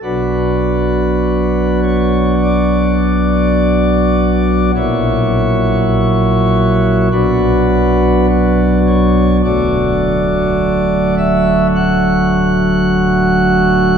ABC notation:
X:1
M:4/4
L:1/8
Q:1/4=52
K:Bm
V:1 name="Pipe organ"
B3 c d4 | c4 B2 F c | d3 e f4 |]
V:2 name="Pipe organ" clef=bass
[B,,,B,,F,DF]8 | [^A,,,^A,,F,EF]4 [B,,,B,,F,DF]4 | [D,,,D,,F,A,F]8 |]